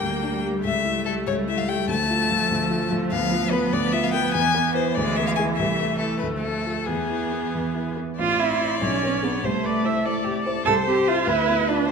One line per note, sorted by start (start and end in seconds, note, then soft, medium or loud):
0.00 0.02 D2 soft
0.00 0.63 D2 soft
0.00 0.15 G3 soft
0.00 1.91 G3 soft
0.00 0.63 A#3 soft
0.00 0.23 D4 soft
0.00 0.43 G5 medium
0.23 0.56 D4 soft
0.44 0.65 G3 soft
0.64 1.25 C#2 soft
0.64 3.14 A3 soft
0.64 1.03 E5 medium
0.85 1.18 E4 soft
1.06 1.40 G3 soft
1.06 1.14 A4 medium
1.26 1.87 C#2 soft
1.26 1.34 C#5 medium
1.47 1.81 E4 soft
1.47 1.60 E5 medium
1.58 1.69 F5 medium
1.68 1.89 G3 soft
1.68 1.89 G5 medium
1.87 2.49 D2 medium
1.87 4.36 F3 medium
1.87 2.90 A5 medium
2.10 2.43 F4 soft
2.31 2.63 F3 soft
2.51 3.10 D2 soft
2.70 3.03 F4 soft
2.91 3.12 F3 soft
3.11 3.71 D2 medium
3.11 4.98 B3 medium
3.11 3.52 F5 medium
3.31 3.64 F4 soft
3.51 3.84 B3 soft
3.51 3.74 B4 medium
3.73 4.32 D2 soft
3.73 3.94 D5 medium
3.92 4.25 F4 soft
3.92 4.05 E5 medium
4.03 4.12 F5 medium
4.13 4.34 B3 soft
4.13 4.33 G5 medium
4.33 4.94 E2 medium
4.33 6.25 E3 medium
4.33 4.74 G#5 medium
4.55 4.88 B3 soft
4.75 4.94 E4 soft
4.75 4.94 B4 soft
4.75 4.96 C5 medium
4.94 5.57 D2 medium
4.94 5.58 G#3 soft
4.94 5.18 D5 medium
5.16 5.51 B3 soft
5.16 5.26 E5 medium
5.27 5.31 F5 medium
5.36 5.57 E4 soft
5.36 5.57 G#4 soft
5.36 5.44 G#5 medium
5.56 6.20 C2 soft
5.56 6.88 A3 soft
5.56 5.98 E5 medium
5.80 6.14 A3 soft
5.98 6.20 E4 soft
5.98 6.18 A4 medium
5.98 6.20 A4 soft
6.18 6.26 B4 medium
6.22 6.86 D2 soft
6.22 6.87 F3 soft
6.40 6.78 A3 soft
6.40 6.87 A4 medium
6.66 6.86 F4 soft
6.66 6.86 A4 soft
6.86 7.53 E2 soft
6.86 7.96 E3 soft
6.86 7.98 B3 soft
6.86 7.97 G#4 medium
7.10 7.46 E4 soft
7.32 7.67 B3 soft
7.54 8.17 E2 soft
7.75 8.10 E4 soft
7.96 8.18 B3 soft
8.18 8.79 A1 soft
8.18 8.41 F4 medium
8.18 8.84 C5 soft
8.18 9.45 D5 medium
8.39 8.73 C4 soft
8.39 8.81 E4 medium
8.61 8.80 E4 soft
8.81 9.42 B1 soft
8.81 9.25 C#4 medium
8.81 9.47 C#5 soft
9.03 9.36 B3 soft
9.23 9.46 B3 medium
9.23 9.41 D4 soft
9.23 9.41 G#4 soft
9.43 10.62 C2 soft
9.43 10.46 A3 medium
9.43 9.64 C5 medium
9.43 9.67 C5 soft
9.63 9.97 A3 soft
9.63 9.86 B4 medium
9.63 9.87 D5 soft
9.84 10.03 E4 soft
9.84 10.03 C5 soft
9.84 10.07 E5 medium
10.03 10.23 E4 soft
10.03 10.25 A4 medium
10.03 10.23 C5 soft
10.03 10.66 D5 soft
10.24 10.58 C3 soft
10.24 10.43 G4 medium
10.43 10.64 E4 soft
10.43 10.65 A4 medium
10.43 10.64 C5 soft
10.63 11.26 C2 soft
10.63 10.74 A4 medium
10.63 11.25 C5 medium
10.63 11.29 C5 soft
10.87 11.20 C4 soft
10.87 11.09 G4 medium
11.07 11.26 E4 soft
11.07 11.30 F4 medium
11.07 11.26 E5 soft
11.25 11.86 D2 medium
11.25 11.70 E4 medium
11.25 11.86 B4 medium
11.25 11.88 B4 soft
11.47 11.80 B3 soft
11.69 11.91 D4 medium
11.69 11.87 F4 soft
11.69 11.87 D5 soft
11.87 11.92 C5 medium